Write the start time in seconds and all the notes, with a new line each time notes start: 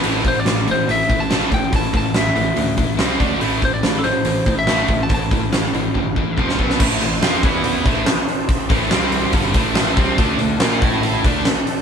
0.04 A1 A2 E3 A3, open hi-hat, crash
0.24 A2 E3, kick, open hi-hat
0.28 C5
0.40 D5
0.45 A1 A2 E3, snare, open hi-hat
0.68 A2 E3 C5, open hi-hat
0.87 A1 A2 E3 E5, open hi-hat
1.09 A1 A2 E3, kick, open hi-hat
1.20 A5
1.30 A1 A2 E3 A3, snare, open hi-hat
1.51 A1 A2 E3 G5, kick, open hi-hat
1.72 A1 A2 E3 A5, kick, open hi-hat
1.93 A1 A2 E3 A5, kick, open hi-hat
2.14 A1 A2 E3 E5, snare, open hi-hat
2.36 A1 A2 E3, open hi-hat
2.56 D2 A2 E3, open hi-hat
2.78 A2 E3, kick, open hi-hat
2.97 C2 C3 G3 C4, snare, open hi-hat
3.18 D2 D3 A3 D4, kick, open hi-hat
3.40 A1 A2 E3 A3, open hi-hat
3.62 A2 E3 C5, kick, open hi-hat
3.74 D5
3.83 A1 A2 E3, snare, open hi-hat
3.99 A4
4.04 A2 E3 C5, open hi-hat
4.25 A1 A2 E3, open hi-hat
4.46 A1 A2 E3, kick, open hi-hat
4.59 E5
4.67 A1 A2 E3 A3, snare, open hi-hat
4.88 A1 A2 E3, kick, open hi-hat
5.03 A5
5.09 A1 A2 E3, kick, open hi-hat
5.14 A5
5.31 A1 A2 E3, kick, open hi-hat
5.53 A1 A2 E3, snare, open hi-hat
5.73 A1 A2 E3, open hi-hat
5.94 G1 A2 E3, kick
6.16 A2 E3, kick
6.36 F1 F2 C3 F3, kick
6.49 snare
6.59 B1 B2 F#3 B3, kick
6.70 snare
6.80 A1 A2 E3 A3 E4 C5 A5, kick, crash
7.01 A1 A2 E3, open hi-hat
7.22 F2 F3 C4 F4, snare, open hi-hat
7.43 E2 E3 B3 E4 B4 B5, kick, open hi-hat
7.64 open hi-hat
7.86 A1 A2 E3 A3 C5 A5, kick, open hi-hat
8.06 snare, open hi-hat
8.28 open hi-hat
8.49 kick, open hi-hat
8.70 A1 A2 E3 A3, kick, open hi-hat
8.91 C2 C3 G3 C4 G4 C6, snare, open hi-hat
9.12 open hi-hat
9.31 G1 G2 E4 A5, kick, open hi-hat
9.35 D3 G3
9.54 A1 A2 E3 A3, kick, open hi-hat
9.75 snare, open hi-hat
9.96 C2 C3 G3 C4, kick, open hi-hat
10.17 D2 D3 A3 D4 A4 A5, kick, open hi-hat
10.39 D2 D3 A3, open hi-hat
10.60 A#2 A#3 F4 A#4, snare, open hi-hat
10.80 A2 A3 E4 A4 A5, kick, open hi-hat
11.03 open hi-hat
11.24 D2 D3 A3 D4 A5, kick, open hi-hat
11.45 snare, open hi-hat
11.67 open hi-hat